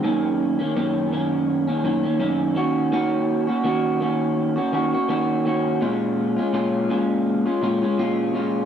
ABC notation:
X:1
M:4/4
L:1/16
Q:"Swing 16ths" 1/4=83
K:Bbm
V:1 name="Clean electric guitar"
[G,,E,B,D]3 [E,B,D] [G,,E,B,D]2 [G,,E,B,D]3 [E,B,D] [G,,E,B,D] [E,B,D] [G,,E,B,D]2 [E,B,DG]2 | [E,B,DG]3 [B,DG] [E,B,DG]2 [E,B,DG]3 [B,DG] [E,B,DG] [B,DG] [E,B,DG]2 [E,B,DG]2 | [B,,A,DF]3 [A,DF] [B,,A,DF]2 [B,,A,DF]3 [A,DF] [B,,A,DF] [A,DF] [B,,A,DF]2 [B,,A,DF]2 |]